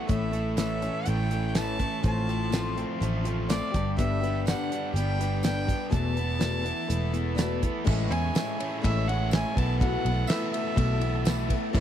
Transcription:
Already playing: A3
0.07 A1 A2 E3 A3 C#4 E4 A4 C#5 E5, kick, closed hi-hat
0.31 A3 C#4 E4, closed hi-hat
0.57 A2 E3 A3 C#4 E4 E5, snare, closed hi-hat, tambourine
0.81 A3 C#4 E4, closed hi-hat
1.05 A1 E3 A3 C#4 E4 G5, closed hi-hat
1.30 E3 A3 C#4 E4, closed hi-hat
1.48 G5
1.55 A2 E3 A3 C#4 E4 A5, snare, closed hi-hat, tambourine
1.79 A3 C#4 E4, kick, closed hi-hat
2.03 A1 A2 F3 A3 C4 F4 A4 C5 A5, kick, closed hi-hat
2.27 A3 C4 F4, closed hi-hat
2.50 A2 F3 A3 C4 F4, snare, closed hi-hat, tambourine
2.75 A3 C4 F4, closed hi-hat
3.00 A1 F3 A3 C4 F4, closed hi-hat
3.24 F3 A3 C4 F4, closed hi-hat
3.49 A2 F3 A3 C4 F4 D5, snare, closed hi-hat, tambourine
3.71 G1 G2 G3 B3 D4 G4 B4, kick, closed hi-hat
3.97 G2 D3 G3 B3 D4 G4 E5, kick, closed hi-hat
4.20 G3 B3 D4 G4, closed hi-hat
4.46 G2 D3 G3 B3 D4 G4 F#5, snare, closed hi-hat, tambourine
4.69 G3 B3 D4 G4, closed hi-hat
4.93 G1 G3 B3 D4 G4 G5, closed hi-hat
5.18 G3 B3 D4 G4, closed hi-hat
5.43 G2 D3 G3 B3 D4 G4 G5, snare, closed hi-hat, tambourine
5.67 G3 B3 D4 G4, kick, closed hi-hat
5.89 E1 E2 B2 E3 A3 B3 E4 A4 B4 A5, kick, closed hi-hat
6.14 E3 A3 B3 E4, closed hi-hat
6.38 E2 B2 E3 A3 B3 E4, snare, closed hi-hat, tambourine
6.62 E3 A3 B3 E4, closed hi-hat
6.87 E1 E3 A3 B3 E4, closed hi-hat
7.12 E3 A3 B3 E4, closed hi-hat
7.35 E2 B2 E3 A3 B3 E4, snare, closed hi-hat, tambourine
7.61 E3 A3 B3 E4, kick, closed hi-hat
7.84 A1 A2 E3 G#3 A3 C#4 E4 G#4, kick, crash
8.09 E2 G#3 C#4 E4 G#5, ride
8.34 E3 G#3 C#4 E4, snare, ride, tambourine
8.58 A2 E3 G#3 A3 C#4 E4, ride
8.82 A1 A2 E3 G#3 C#4 E4 E5, kick, ride
9.07 G#3 C#4 E4 F#5, ride
9.30 E3 G#3 C#4 E4 G#5, snare, ride, tambourine
9.54 B1 B2 E3 A3 B3 E4 A4 A5, kick
9.58 A3, ride
9.80 B2 E3 A3 B3 E4 F#5, kick, ride
10.04 B1 A3 B3 E4, ride
10.27 B2 E3 A3 B3 E5, snare, ride, tambourine
10.32 E4
10.52 A3 B3 E4 E5, ride
10.76 B1 B2 E3 A3 B3 E4, kick, ride
11.00 A3 B3 E4, ride
11.25 E3 A3 B3 E4, snare, ride, tambourine
11.48 A3 B3 E4, kick, ride
11.72 A1 A2 E3 G#3 A3 C#4 E4 A4, kick, crash

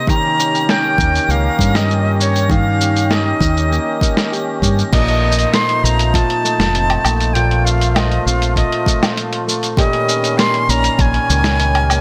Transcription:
Already playing: C3 A#3 C4 G4 D#5 A#6
0.07 D#3 C#4 G4 A#5, kick, shaker
0.38 C#4, shaker
0.55 shaker
0.68 A#3 G5, snare, shaker
0.98 D#2 C#4, kick, shaker
1.15 shaker
1.28 C#2 A#3 F5, shaker
1.59 G2 C#4, kick, shaker
1.75 D#5, snare, shaker
1.90 F4, shaker
2.05 G4
2.20 C#4 C#5, shaker
2.35 shaker
2.50 D#3 F5, kick, shaker
2.80 C#4, shaker
2.96 shaker
3.10 A#3 D#5, snare, shaker
3.41 D#2 C#4, kick, shaker
3.57 shaker
3.71 A#3, shaker
4.01 C#4, kick, shaker
4.17 snare, shaker
4.32 G4, shaker
4.62 G2 C#4, kick, shaker
4.79 shaker
4.93 A#1 A#2 F3 A3 D#4 F4 D#5, kick, closed hi-hat, crash, shaker
5.08 closed hi-hat
5.23 C4
5.32 shaker
5.39 closed hi-hat, shaker
5.54 A3 C6, snare, closed hi-hat, shaker
5.69 closed hi-hat
5.84 A#1 C4 A#5, shaker
5.99 closed hi-hat, shaker
6.14 F4 A5, kick, closed hi-hat, shaker
6.30 closed hi-hat
6.44 A3, shaker
6.59 F1, snare, closed hi-hat, shaker
6.75 C4, closed hi-hat, shaker
6.90 closed hi-hat, low woodblock
7.05 A#1 A3, low woodblock, shaker
7.20 closed hi-hat, shaker
7.34 A#2 F4 G5, closed hi-hat, shaker
7.51 closed hi-hat
7.65 C4 F5, shaker
7.81 closed hi-hat, shaker
7.96 A3 D#5, snare, closed hi-hat, low woodblock, shaker
8.12 closed hi-hat
8.26 A#1 C4 F5, shaker
8.42 closed hi-hat, shaker
8.56 F4 D#5, kick, closed hi-hat, shaker
8.72 closed hi-hat
8.86 A3, kick, shaker
9.03 snare, closed hi-hat, low woodblock, shaker
9.17 C4, closed hi-hat, shaker
9.33 closed hi-hat
9.47 A3, shaker
9.63 closed hi-hat, shaker
9.77 A#2 D#3 G3 C#4 G4 D#5, kick, closed hi-hat, shaker
9.93 closed hi-hat
10.08 C#4, shaker
10.24 closed hi-hat, shaker
10.38 A#3 C6, snare, closed hi-hat, shaker
10.54 closed hi-hat
10.69 A#1 C#4 A#5, shaker
10.84 closed hi-hat, shaker
10.99 A#1 G#5, kick, closed hi-hat, shaker
11.14 closed hi-hat
11.29 C#2 A#3, shaker
11.44 snare, closed hi-hat, shaker
11.60 C#4, closed hi-hat, shaker
11.75 closed hi-hat, low woodblock
11.90 A#3, low woodblock, shaker

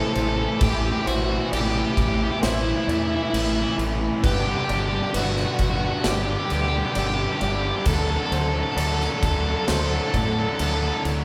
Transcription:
Already playing: C3 G3 A3 E4 C5
0.04 A2 E3 A4
0.12 A1 A2 E3 A4 C5, crash
0.20 A2 E3 A4
0.28 A2 E3 A4
0.36 A2 E3 A4
0.43 A2 E3 A4
0.51 A2 E3 A4
0.59 A1 A2 B2 E3 A4, kick, crash
0.63 G4
0.68 A2 E3 G4
0.75 A2 E3
0.79 G4
0.83 A2 E3 G4
0.91 A2 E3 G4
1.00 A2 E3 G4
1.06 A1 A2 E3 F#4 C5, crash
1.15 A2 E3 F#4
1.22 A2 E3 F#4
1.30 A2 E3 F#4
1.37 A2 E3 F#4
1.45 A2 E3
1.51 A1 A2 E3 G4 D5, crash
1.60 A2 E3 G4
1.68 A2 E3 G4
1.75 A2 E3 G4
1.83 A2 E3 G4
1.91 A2 E3 G4
1.97 A1 A2 E3 G4, kick, crash
2.07 A2 E3 G4
2.14 A2 E3 G4
2.22 A2 E3 G4
2.30 A2 E3 G4
2.37 A2 E3
2.42 A1 E4 C5, snare, crash
2.46 A2 E3
2.53 A2 E3 E4
2.60 A2 E3 E4
2.69 A2 E3 E4
2.76 A2 E3 E4
2.84 E2 A2 E3 E4 D5
2.89 A2 E3 E4, crash
2.98 A2 E3 E4
3.07 A2 E3 E4
3.15 A2 E3 E4
3.22 A2 E3 E4
3.30 A1 A2 E3 E4
3.34 E4, crash
3.38 A2 E3
3.45 A2 E3 E4
3.53 A2 E3 E4
3.60 A2 E3 E4
3.67 A2 E3 E4
3.75 A1 A2 E3, crash
3.85 A2 E3
3.91 A2 E3
4.00 A2 E3
4.07 A2 E3
4.14 A2 E3
4.23 G1 G2 D3 G3 G4 B4, kick, crash
4.31 G2 D3 G4
4.39 G2 D3 G4
4.47 G2 D3 G4
4.54 G2 D3 G4
4.62 G2 D3 G4
4.68 G1 G2 D3 G4 D5, crash
4.78 G2 D3 G4
4.85 G2 D3 G4
4.93 G2 D3 G4
5.00 G2 D3 G4
5.07 G2 D3 G4
5.14 G1 G2 D3 F#4 B4, crash
5.23 G2 D3 F#4
5.30 G2 D3 F#4
5.37 G2 D3 F#4, snare
5.45 G2 D3 F#4
5.53 G2 D3 F#4
5.59 G1 G2 F#4, kick, crash
5.63 D3
5.70 G2 D3 F#4
5.76 G2 D3 F#4
5.85 G2 D3 F#4
5.91 G2 D3 F#4
5.99 G2 D3 F#4
6.04 G1 G4 D5, snare, crash
6.08 G2 D3
6.15 G2 D3 G4
6.23 G2 D3 G4
6.29 G2 D3 G4
6.38 G2 D3 G4
6.46 G2 D3 G4
6.50 D2 G4, crash
6.55 G2 D3
6.61 G2 D3 G4
6.68 G2 D3 G4
6.77 G2 D3 G4
6.85 G2 D3 G4
6.91 G2 D3 G4 D5, crash
6.96 G1 G4
7.01 G2 D3
7.07 G2 D3 G4
7.14 G2 D3 G4
7.22 G2 D3 G4
7.30 G2 D3 G4
7.37 G2 D3 G4 D5
7.41 G1 G4, crash
7.47 G2 D3
7.53 G2 D3 G4
7.61 G2 D3 G4
7.68 G2 D3 G4
7.76 G2 D3 G4
7.85 D2 D3 F#3 A3 F#4 A4, kick, crash
7.94 D3 F#3 A4
8.02 D3 F#3 A4
8.10 D3 F#3 A4
8.17 D3 F#3 A4
8.25 D3 F#3 A4
8.31 D2 D3 F#3 A4 C5, crash
8.40 D3 F#3 A4
8.48 D3 F#3 A4
8.56 D3 F#3 A4
8.63 D3 F#3 A4
8.72 D3 F#3 A4
8.76 D2 D3 A4 D5, crash
8.80 F#3
8.87 D3 F#3 A4
8.95 D3 F#3 A4
9.00 D3 F#3 A4, snare
9.10 D3 F#3 A4
9.18 D3 F#3 A4
9.23 D2 A4, kick, crash
9.27 D3 F#3
9.33 D3 F#3 A4
9.41 D3 F#3 A4
9.49 D3 F#3 A4
9.57 D3 F#3 A4
9.64 D3 F#3 A4 C5, snare, crash
9.68 D2 D3 F#3 E4 A4
9.79 D3 F#3 A4
9.86 D3 F#3 A4
9.94 D3 F#3 A4
10.02 D3 F#3 A4
10.09 D3 F#3 A4 D5
10.14 A2 A4, kick, crash
10.20 D3 F#3
10.25 D3 F#3 A4
10.33 D3 F#3 A4
10.40 D3 F#3 A4
10.48 D3 F#3 A4
10.56 D3 F#3 A4, crash
10.60 D2 A4
10.66 D3 F#3
10.71 D3 F#3 A4
10.79 D3 F#3 A4
10.87 D3 F#3 A4
10.94 D3 F#3 A4
11.04 D2 D3 F#3, crash
11.12 D3 F#3
11.19 D3 F#3

